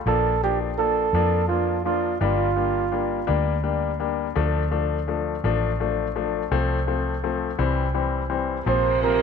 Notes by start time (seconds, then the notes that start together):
0.06 A#1 F3 A#3 D4 A4
0.43 F3 A#3 D4 G4
0.78 F3 A#3 D4 A4
1.13 F2 F3 A#3 D4
1.48 F3 A#3 D4 F4
1.85 F3 A#3 D4 F4
2.20 G1 G3 A#3 D4 F4
2.56 G3 A#3 D4
2.92 G3 A#3 D4
3.27 D2 G3 A#3 D4
3.63 G3 A#3 D4
4.00 G3 A#3 D4
4.35 D2 F3 A3 D4
4.71 F3 A3 D4
5.08 F3 A3 D4
5.44 A1 F3 A3 D4
5.80 F3 A3 D4
6.16 F3 A3 D4
6.51 C2 F3 A3 C4
6.87 F3 A3 C4
7.23 F3 A3 C4
7.58 C2 E3 G3 C4
7.94 E3 G3 C4
8.30 E3 G3 C4
8.66 A#1 C3 F3 A#3 C4 C5
9.03 F3 A#3 C4 A#4